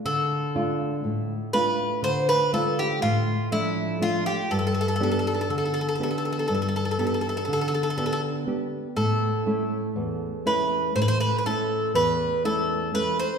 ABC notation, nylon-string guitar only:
X:1
M:9/8
L:1/8
Q:3/8=40
K:Ddor
V:1 name="Nylon-string guitar"
D, [A,DF] A,, [A,DF] D, [A,DF] A,, [F,A,D] [A,DF] | G,, [B,DG] D, [B,DG] G,, [B,DG] D, [B,DG] [B,DG] | A,, [A,^CE] E,, [A,CE] A,, [A,CE] E,, [A,CE] [A,CE] |]